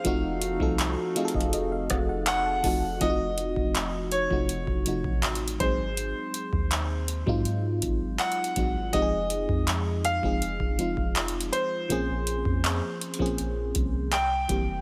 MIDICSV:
0, 0, Header, 1, 6, 480
1, 0, Start_track
1, 0, Tempo, 740741
1, 30, Time_signature, 4, 2, 24, 8
1, 9599, End_track
2, 0, Start_track
2, 0, Title_t, "Grand piano"
2, 0, Program_c, 0, 0
2, 0, Note_on_c, 0, 77, 98
2, 1203, Note_off_c, 0, 77, 0
2, 1473, Note_on_c, 0, 78, 99
2, 1952, Note_on_c, 0, 75, 91
2, 1966, Note_off_c, 0, 78, 0
2, 2645, Note_off_c, 0, 75, 0
2, 2669, Note_on_c, 0, 73, 74
2, 3364, Note_off_c, 0, 73, 0
2, 3629, Note_on_c, 0, 72, 78
2, 5310, Note_on_c, 0, 78, 98
2, 5360, Note_off_c, 0, 72, 0
2, 5786, Note_on_c, 0, 75, 93
2, 5805, Note_off_c, 0, 78, 0
2, 6511, Note_on_c, 0, 77, 88
2, 6530, Note_off_c, 0, 75, 0
2, 7205, Note_off_c, 0, 77, 0
2, 7468, Note_on_c, 0, 72, 77
2, 9153, Note_on_c, 0, 79, 92
2, 9200, Note_off_c, 0, 72, 0
2, 9599, Note_off_c, 0, 79, 0
2, 9599, End_track
3, 0, Start_track
3, 0, Title_t, "Analog synth pad"
3, 0, Program_c, 1, 89
3, 29, Note_on_c, 1, 69, 82
3, 30, Note_on_c, 1, 53, 86
3, 31, Note_on_c, 1, 63, 78
3, 32, Note_on_c, 1, 66, 97
3, 1930, Note_off_c, 1, 69, 0
3, 1931, Note_off_c, 1, 53, 0
3, 1931, Note_off_c, 1, 63, 0
3, 1932, Note_off_c, 1, 66, 0
3, 9599, End_track
4, 0, Start_track
4, 0, Title_t, "FM electric piano"
4, 0, Program_c, 2, 5
4, 0, Control_c, 2, 64, 127
4, 26, Note_on_c, 2, 53, 100
4, 31, Note_on_c, 2, 57, 93
4, 35, Note_on_c, 2, 60, 93
4, 39, Control_c, 2, 64, 0
4, 41, Note_on_c, 2, 63, 94
4, 45, Note_on_c, 2, 66, 113
4, 169, Control_c, 2, 64, 127
4, 303, Note_off_c, 2, 53, 0
4, 305, Note_off_c, 2, 57, 0
4, 307, Note_off_c, 2, 60, 0
4, 310, Note_off_c, 2, 63, 0
4, 312, Note_off_c, 2, 66, 0
4, 386, Note_on_c, 2, 53, 94
4, 391, Note_on_c, 2, 57, 80
4, 396, Note_on_c, 2, 60, 78
4, 400, Note_on_c, 2, 63, 76
4, 405, Note_on_c, 2, 69, 94
4, 663, Note_off_c, 2, 53, 0
4, 665, Note_off_c, 2, 57, 0
4, 668, Note_off_c, 2, 60, 0
4, 670, Note_off_c, 2, 63, 0
4, 672, Note_off_c, 2, 69, 0
4, 748, Note_on_c, 2, 53, 94
4, 753, Note_on_c, 2, 57, 85
4, 757, Note_on_c, 2, 60, 84
4, 758, Note_on_c, 2, 77, 73
4, 762, Note_on_c, 2, 63, 87
4, 766, Note_on_c, 2, 68, 80
4, 800, Note_off_c, 2, 68, 0
4, 809, Note_on_c, 2, 69, 101
4, 866, Note_off_c, 2, 77, 0
4, 877, Note_on_c, 2, 75, 70
4, 985, Note_off_c, 2, 75, 0
4, 996, Note_on_c, 2, 75, 70
4, 1105, Note_off_c, 2, 75, 0
4, 1115, Note_on_c, 2, 77, 74
4, 1224, Note_off_c, 2, 77, 0
4, 1236, Note_on_c, 2, 78, 74
4, 1345, Note_off_c, 2, 78, 0
4, 1355, Note_on_c, 2, 78, 70
4, 1464, Note_off_c, 2, 78, 0
4, 1476, Note_on_c, 2, 77, 69
4, 1481, Note_off_c, 2, 53, 0
4, 1484, Note_off_c, 2, 57, 0
4, 1486, Note_off_c, 2, 60, 0
4, 1488, Note_off_c, 2, 63, 0
4, 1512, Note_off_c, 2, 69, 0
4, 1585, Note_off_c, 2, 77, 0
4, 1594, Note_on_c, 2, 81, 68
4, 1703, Note_on_c, 2, 53, 76
4, 1704, Note_off_c, 2, 81, 0
4, 1708, Note_on_c, 2, 57, 72
4, 1714, Note_on_c, 2, 60, 68
4, 1714, Note_on_c, 2, 81, 65
4, 1718, Note_on_c, 2, 63, 70
4, 1723, Note_on_c, 2, 66, 88
4, 1890, Note_off_c, 2, 53, 0
4, 1892, Note_off_c, 2, 57, 0
4, 1895, Note_off_c, 2, 60, 0
4, 1897, Note_off_c, 2, 63, 0
4, 1900, Note_off_c, 2, 66, 0
4, 1935, Note_off_c, 2, 81, 0
4, 1945, Note_on_c, 2, 53, 93
4, 1948, Note_on_c, 2, 57, 85
4, 1954, Note_on_c, 2, 60, 85
4, 1959, Note_on_c, 2, 63, 85
4, 1960, Control_c, 2, 64, 0
4, 1963, Note_on_c, 2, 65, 81
4, 1999, Note_off_c, 2, 65, 0
4, 2006, Note_on_c, 2, 66, 101
4, 2065, Control_c, 2, 64, 127
4, 2588, Note_off_c, 2, 53, 0
4, 2590, Note_off_c, 2, 57, 0
4, 2593, Note_off_c, 2, 60, 0
4, 2595, Note_off_c, 2, 63, 0
4, 2619, Note_off_c, 2, 66, 0
4, 2785, Note_on_c, 2, 53, 74
4, 2789, Note_on_c, 2, 57, 70
4, 2794, Note_on_c, 2, 48, 68
4, 2800, Note_on_c, 2, 63, 68
4, 2804, Note_on_c, 2, 66, 78
4, 3062, Note_off_c, 2, 53, 0
4, 3064, Note_off_c, 2, 57, 0
4, 3067, Note_off_c, 2, 48, 0
4, 3070, Note_off_c, 2, 63, 0
4, 3072, Note_off_c, 2, 66, 0
4, 3144, Note_on_c, 2, 53, 65
4, 3150, Note_on_c, 2, 57, 60
4, 3155, Note_on_c, 2, 48, 60
4, 3160, Note_on_c, 2, 63, 61
4, 3165, Note_on_c, 2, 66, 75
4, 3626, Note_on_c, 2, 54, 69
4, 3627, Note_off_c, 2, 53, 0
4, 3630, Note_off_c, 2, 57, 0
4, 3630, Note_on_c, 2, 56, 65
4, 3633, Note_off_c, 2, 48, 0
4, 3633, Note_off_c, 2, 63, 0
4, 3635, Note_on_c, 2, 60, 66
4, 3638, Note_off_c, 2, 66, 0
4, 3640, Control_c, 2, 64, 0
4, 3640, Note_on_c, 2, 63, 63
4, 3644, Note_on_c, 2, 68, 75
4, 3762, Control_c, 2, 64, 127
4, 4396, Note_off_c, 2, 54, 0
4, 4398, Note_off_c, 2, 56, 0
4, 4401, Note_off_c, 2, 60, 0
4, 4403, Note_off_c, 2, 63, 0
4, 4405, Note_off_c, 2, 68, 0
4, 4706, Note_on_c, 2, 54, 86
4, 4710, Note_on_c, 2, 56, 82
4, 4714, Note_on_c, 2, 60, 81
4, 4719, Note_on_c, 2, 63, 80
4, 4725, Note_on_c, 2, 65, 100
4, 5349, Note_off_c, 2, 54, 0
4, 5351, Note_off_c, 2, 56, 0
4, 5353, Note_off_c, 2, 60, 0
4, 5355, Note_off_c, 2, 63, 0
4, 5358, Note_off_c, 2, 65, 0
4, 5545, Note_on_c, 2, 54, 67
4, 5549, Note_on_c, 2, 56, 62
4, 5553, Note_on_c, 2, 60, 62
4, 5559, Note_on_c, 2, 63, 63
4, 5564, Note_on_c, 2, 66, 71
4, 5730, Note_off_c, 2, 54, 0
4, 5733, Note_off_c, 2, 56, 0
4, 5735, Note_off_c, 2, 60, 0
4, 5738, Note_off_c, 2, 63, 0
4, 5740, Note_off_c, 2, 66, 0
4, 5785, Note_on_c, 2, 53, 90
4, 5790, Note_on_c, 2, 56, 91
4, 5795, Note_on_c, 2, 60, 86
4, 5800, Control_c, 2, 64, 0
4, 5800, Note_on_c, 2, 63, 83
4, 5804, Note_on_c, 2, 67, 85
4, 5839, Note_off_c, 2, 67, 0
4, 5846, Note_on_c, 2, 68, 109
4, 5922, Control_c, 2, 64, 127
4, 6428, Note_off_c, 2, 53, 0
4, 6431, Note_off_c, 2, 56, 0
4, 6433, Note_off_c, 2, 60, 0
4, 6436, Note_off_c, 2, 63, 0
4, 6459, Note_off_c, 2, 68, 0
4, 6626, Note_on_c, 2, 53, 73
4, 6630, Note_on_c, 2, 56, 70
4, 6635, Note_on_c, 2, 60, 68
4, 6640, Note_on_c, 2, 63, 69
4, 6645, Note_on_c, 2, 68, 84
4, 6903, Note_off_c, 2, 53, 0
4, 6905, Note_off_c, 2, 56, 0
4, 6907, Note_off_c, 2, 60, 0
4, 6910, Note_off_c, 2, 63, 0
4, 6912, Note_off_c, 2, 68, 0
4, 6985, Note_on_c, 2, 53, 67
4, 6990, Note_on_c, 2, 56, 64
4, 6994, Note_on_c, 2, 60, 62
4, 7000, Note_on_c, 2, 63, 60
4, 7004, Note_on_c, 2, 65, 75
4, 7537, Note_off_c, 2, 53, 0
4, 7539, Note_off_c, 2, 56, 0
4, 7541, Note_off_c, 2, 60, 0
4, 7544, Note_off_c, 2, 63, 0
4, 7546, Note_off_c, 2, 65, 0
4, 7704, Note_on_c, 2, 53, 90
4, 7709, Note_on_c, 2, 58, 89
4, 7714, Note_on_c, 2, 60, 88
4, 7720, Control_c, 2, 64, 0
4, 7720, Note_on_c, 2, 61, 88
4, 7724, Note_on_c, 2, 68, 109
4, 7839, Control_c, 2, 64, 127
4, 8348, Note_off_c, 2, 53, 0
4, 8350, Note_off_c, 2, 58, 0
4, 8353, Note_off_c, 2, 60, 0
4, 8356, Note_off_c, 2, 61, 0
4, 8358, Note_off_c, 2, 68, 0
4, 8545, Note_on_c, 2, 53, 85
4, 8550, Note_on_c, 2, 58, 80
4, 8555, Note_on_c, 2, 60, 79
4, 8560, Note_on_c, 2, 61, 76
4, 8565, Note_on_c, 2, 68, 95
4, 9148, Note_off_c, 2, 53, 0
4, 9150, Note_off_c, 2, 58, 0
4, 9153, Note_off_c, 2, 60, 0
4, 9155, Note_off_c, 2, 61, 0
4, 9158, Note_off_c, 2, 68, 0
4, 9159, Control_c, 2, 64, 0
4, 9268, Control_c, 2, 64, 127
4, 9385, Note_on_c, 2, 52, 65
4, 9390, Note_on_c, 2, 55, 60
4, 9394, Note_on_c, 2, 58, 60
4, 9400, Note_on_c, 2, 60, 60
4, 9405, Note_on_c, 2, 67, 73
4, 9571, Note_off_c, 2, 52, 0
4, 9573, Note_off_c, 2, 55, 0
4, 9575, Note_off_c, 2, 58, 0
4, 9578, Note_off_c, 2, 60, 0
4, 9581, Note_off_c, 2, 67, 0
4, 9599, End_track
5, 0, Start_track
5, 0, Title_t, "808-style bass"
5, 0, Program_c, 3, 38
5, 33, Note_on_c, 3, 29, 109
5, 377, Note_off_c, 3, 29, 0
5, 392, Note_on_c, 3, 36, 107
5, 621, Note_off_c, 3, 36, 0
5, 873, Note_on_c, 3, 29, 104
5, 1218, Note_off_c, 3, 29, 0
5, 1235, Note_on_c, 3, 29, 110
5, 1694, Note_off_c, 3, 29, 0
5, 1711, Note_on_c, 3, 29, 102
5, 1941, Note_off_c, 3, 29, 0
5, 1953, Note_on_c, 3, 29, 112
5, 2297, Note_off_c, 3, 29, 0
5, 2311, Note_on_c, 3, 29, 98
5, 2772, Note_off_c, 3, 29, 0
5, 2792, Note_on_c, 3, 29, 97
5, 3022, Note_off_c, 3, 29, 0
5, 3030, Note_on_c, 3, 29, 94
5, 3261, Note_off_c, 3, 29, 0
5, 3270, Note_on_c, 3, 33, 96
5, 3616, Note_off_c, 3, 33, 0
5, 3631, Note_on_c, 3, 32, 100
5, 3976, Note_off_c, 3, 32, 0
5, 4231, Note_on_c, 3, 39, 99
5, 4691, Note_off_c, 3, 39, 0
5, 4713, Note_on_c, 3, 44, 104
5, 5057, Note_off_c, 3, 44, 0
5, 5074, Note_on_c, 3, 32, 101
5, 5303, Note_off_c, 3, 32, 0
5, 5552, Note_on_c, 3, 32, 96
5, 5781, Note_off_c, 3, 32, 0
5, 5791, Note_on_c, 3, 29, 107
5, 6136, Note_off_c, 3, 29, 0
5, 6151, Note_on_c, 3, 41, 97
5, 6611, Note_off_c, 3, 41, 0
5, 6632, Note_on_c, 3, 29, 100
5, 6861, Note_off_c, 3, 29, 0
5, 6870, Note_on_c, 3, 29, 99
5, 7100, Note_off_c, 3, 29, 0
5, 7111, Note_on_c, 3, 29, 101
5, 7456, Note_off_c, 3, 29, 0
5, 7714, Note_on_c, 3, 34, 109
5, 8058, Note_off_c, 3, 34, 0
5, 8072, Note_on_c, 3, 41, 96
5, 8302, Note_off_c, 3, 41, 0
5, 8553, Note_on_c, 3, 34, 95
5, 8897, Note_off_c, 3, 34, 0
5, 8914, Note_on_c, 3, 36, 101
5, 9373, Note_off_c, 3, 36, 0
5, 9392, Note_on_c, 3, 29, 97
5, 9599, Note_off_c, 3, 29, 0
5, 9599, End_track
6, 0, Start_track
6, 0, Title_t, "Drums"
6, 31, Note_on_c, 9, 36, 111
6, 31, Note_on_c, 9, 42, 84
6, 95, Note_off_c, 9, 42, 0
6, 96, Note_off_c, 9, 36, 0
6, 269, Note_on_c, 9, 42, 73
6, 334, Note_off_c, 9, 42, 0
6, 390, Note_on_c, 9, 36, 102
6, 455, Note_off_c, 9, 36, 0
6, 511, Note_on_c, 9, 42, 69
6, 515, Note_on_c, 9, 39, 114
6, 576, Note_off_c, 9, 42, 0
6, 580, Note_off_c, 9, 39, 0
6, 752, Note_on_c, 9, 42, 65
6, 816, Note_off_c, 9, 42, 0
6, 831, Note_on_c, 9, 42, 65
6, 872, Note_on_c, 9, 36, 94
6, 896, Note_off_c, 9, 42, 0
6, 911, Note_on_c, 9, 42, 55
6, 936, Note_off_c, 9, 36, 0
6, 975, Note_off_c, 9, 42, 0
6, 991, Note_on_c, 9, 42, 74
6, 1056, Note_off_c, 9, 42, 0
6, 1229, Note_on_c, 9, 42, 78
6, 1233, Note_on_c, 9, 36, 88
6, 1234, Note_on_c, 9, 37, 94
6, 1294, Note_off_c, 9, 42, 0
6, 1298, Note_off_c, 9, 36, 0
6, 1299, Note_off_c, 9, 37, 0
6, 1467, Note_on_c, 9, 42, 75
6, 1471, Note_on_c, 9, 39, 112
6, 1532, Note_off_c, 9, 42, 0
6, 1536, Note_off_c, 9, 39, 0
6, 1710, Note_on_c, 9, 36, 110
6, 1710, Note_on_c, 9, 46, 76
6, 1775, Note_off_c, 9, 36, 0
6, 1775, Note_off_c, 9, 46, 0
6, 1950, Note_on_c, 9, 42, 75
6, 1951, Note_on_c, 9, 36, 107
6, 2014, Note_off_c, 9, 42, 0
6, 2016, Note_off_c, 9, 36, 0
6, 2188, Note_on_c, 9, 42, 62
6, 2253, Note_off_c, 9, 42, 0
6, 2310, Note_on_c, 9, 36, 90
6, 2374, Note_off_c, 9, 36, 0
6, 2431, Note_on_c, 9, 42, 67
6, 2434, Note_on_c, 9, 39, 115
6, 2495, Note_off_c, 9, 42, 0
6, 2499, Note_off_c, 9, 39, 0
6, 2667, Note_on_c, 9, 42, 69
6, 2732, Note_off_c, 9, 42, 0
6, 2791, Note_on_c, 9, 36, 89
6, 2855, Note_off_c, 9, 36, 0
6, 2910, Note_on_c, 9, 42, 70
6, 2975, Note_off_c, 9, 42, 0
6, 3029, Note_on_c, 9, 36, 90
6, 3093, Note_off_c, 9, 36, 0
6, 3148, Note_on_c, 9, 42, 75
6, 3213, Note_off_c, 9, 42, 0
6, 3268, Note_on_c, 9, 36, 90
6, 3333, Note_off_c, 9, 36, 0
6, 3389, Note_on_c, 9, 42, 64
6, 3391, Note_on_c, 9, 39, 109
6, 3454, Note_off_c, 9, 42, 0
6, 3455, Note_off_c, 9, 39, 0
6, 3470, Note_on_c, 9, 42, 61
6, 3535, Note_off_c, 9, 42, 0
6, 3549, Note_on_c, 9, 42, 60
6, 3613, Note_off_c, 9, 42, 0
6, 3630, Note_on_c, 9, 42, 71
6, 3631, Note_on_c, 9, 36, 113
6, 3695, Note_off_c, 9, 36, 0
6, 3695, Note_off_c, 9, 42, 0
6, 3871, Note_on_c, 9, 42, 76
6, 3936, Note_off_c, 9, 42, 0
6, 4109, Note_on_c, 9, 42, 63
6, 4174, Note_off_c, 9, 42, 0
6, 4229, Note_on_c, 9, 36, 93
6, 4294, Note_off_c, 9, 36, 0
6, 4350, Note_on_c, 9, 42, 72
6, 4353, Note_on_c, 9, 39, 119
6, 4415, Note_off_c, 9, 42, 0
6, 4418, Note_off_c, 9, 39, 0
6, 4589, Note_on_c, 9, 42, 67
6, 4654, Note_off_c, 9, 42, 0
6, 4711, Note_on_c, 9, 36, 90
6, 4775, Note_off_c, 9, 36, 0
6, 4830, Note_on_c, 9, 42, 71
6, 4895, Note_off_c, 9, 42, 0
6, 5068, Note_on_c, 9, 42, 75
6, 5072, Note_on_c, 9, 36, 82
6, 5133, Note_off_c, 9, 42, 0
6, 5137, Note_off_c, 9, 36, 0
6, 5309, Note_on_c, 9, 42, 64
6, 5310, Note_on_c, 9, 39, 110
6, 5374, Note_off_c, 9, 42, 0
6, 5375, Note_off_c, 9, 39, 0
6, 5389, Note_on_c, 9, 42, 63
6, 5454, Note_off_c, 9, 42, 0
6, 5470, Note_on_c, 9, 42, 59
6, 5535, Note_off_c, 9, 42, 0
6, 5548, Note_on_c, 9, 42, 73
6, 5549, Note_on_c, 9, 36, 109
6, 5612, Note_off_c, 9, 42, 0
6, 5614, Note_off_c, 9, 36, 0
6, 5789, Note_on_c, 9, 42, 77
6, 5790, Note_on_c, 9, 36, 101
6, 5853, Note_off_c, 9, 42, 0
6, 5854, Note_off_c, 9, 36, 0
6, 6027, Note_on_c, 9, 42, 65
6, 6092, Note_off_c, 9, 42, 0
6, 6149, Note_on_c, 9, 36, 95
6, 6214, Note_off_c, 9, 36, 0
6, 6269, Note_on_c, 9, 42, 66
6, 6273, Note_on_c, 9, 39, 119
6, 6334, Note_off_c, 9, 42, 0
6, 6337, Note_off_c, 9, 39, 0
6, 6510, Note_on_c, 9, 42, 66
6, 6574, Note_off_c, 9, 42, 0
6, 6631, Note_on_c, 9, 36, 90
6, 6696, Note_off_c, 9, 36, 0
6, 6752, Note_on_c, 9, 42, 67
6, 6816, Note_off_c, 9, 42, 0
6, 6869, Note_on_c, 9, 36, 96
6, 6934, Note_off_c, 9, 36, 0
6, 6991, Note_on_c, 9, 42, 71
6, 7056, Note_off_c, 9, 42, 0
6, 7109, Note_on_c, 9, 36, 91
6, 7174, Note_off_c, 9, 36, 0
6, 7230, Note_on_c, 9, 42, 64
6, 7232, Note_on_c, 9, 39, 110
6, 7295, Note_off_c, 9, 42, 0
6, 7297, Note_off_c, 9, 39, 0
6, 7312, Note_on_c, 9, 42, 66
6, 7377, Note_off_c, 9, 42, 0
6, 7391, Note_on_c, 9, 42, 61
6, 7455, Note_off_c, 9, 42, 0
6, 7471, Note_on_c, 9, 42, 73
6, 7536, Note_off_c, 9, 42, 0
6, 7711, Note_on_c, 9, 36, 100
6, 7712, Note_on_c, 9, 42, 75
6, 7776, Note_off_c, 9, 36, 0
6, 7777, Note_off_c, 9, 42, 0
6, 7951, Note_on_c, 9, 42, 65
6, 8015, Note_off_c, 9, 42, 0
6, 8070, Note_on_c, 9, 36, 88
6, 8135, Note_off_c, 9, 36, 0
6, 8193, Note_on_c, 9, 42, 65
6, 8197, Note_on_c, 9, 39, 109
6, 8258, Note_off_c, 9, 42, 0
6, 8262, Note_off_c, 9, 39, 0
6, 8433, Note_on_c, 9, 42, 57
6, 8498, Note_off_c, 9, 42, 0
6, 8513, Note_on_c, 9, 42, 58
6, 8552, Note_on_c, 9, 36, 91
6, 8578, Note_off_c, 9, 42, 0
6, 8592, Note_on_c, 9, 42, 50
6, 8616, Note_off_c, 9, 36, 0
6, 8657, Note_off_c, 9, 42, 0
6, 8672, Note_on_c, 9, 42, 72
6, 8737, Note_off_c, 9, 42, 0
6, 8909, Note_on_c, 9, 42, 74
6, 8913, Note_on_c, 9, 36, 88
6, 8974, Note_off_c, 9, 42, 0
6, 8978, Note_off_c, 9, 36, 0
6, 9149, Note_on_c, 9, 42, 70
6, 9154, Note_on_c, 9, 39, 113
6, 9214, Note_off_c, 9, 42, 0
6, 9218, Note_off_c, 9, 39, 0
6, 9391, Note_on_c, 9, 36, 100
6, 9391, Note_on_c, 9, 42, 73
6, 9456, Note_off_c, 9, 36, 0
6, 9456, Note_off_c, 9, 42, 0
6, 9599, End_track
0, 0, End_of_file